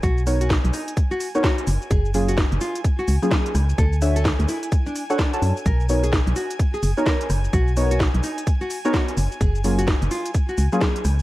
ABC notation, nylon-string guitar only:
X:1
M:4/4
L:1/16
Q:"Swing 16ths" 1/4=128
K:F#
V:1 name="Nylon-string guitar"
F z2 F z2 D z2 F z2 F2 z2 | G z2 F z2 E z2 F z2 G2 z2 | =A z2 A z2 =E z2 =D z2 D2 z2 | A z2 G z2 F z2 G z2 A2 z2 |
F z2 F z2 D z2 F z2 F2 z2 | G z2 F z2 E z2 F z2 G2 z2 |]